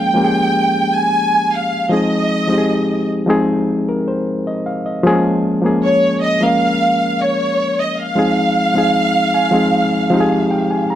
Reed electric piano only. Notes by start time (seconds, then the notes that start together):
Already playing: F3 G#3 A#3 C#4 G#4
0.14 F3 G#3 A#3 C#4 G4
0.24 G#4
1.90 F3 G#3 C4 D#4 G#4
2.47 F3 G#3 C4 D#4 G4
2.58 G#4
3.26 F3 G#3 C4 D#4 G#4
3.89 A#4
4.08 C5
4.47 D#5
4.66 F5
4.86 D#5
5.03 F3 G#3 A#3 C#4 G#4
5.62 F3 G#3 A#3 C#4 G#4
6.40 F3 G#3 A#3 C#4 A#4
8.15 F3 G#3 C4 D#4 G#4
8.74 F3 G#3 C4 D#4
8.78 G#4
9.34 G#5
9.51 F3 G#3 C4 D#4 G#4
9.73 F5
10.10 F3 G#3 C4 D#4
10.14 G4
10.20 G#4
10.51 G5
10.71 G#5
10.90 A#5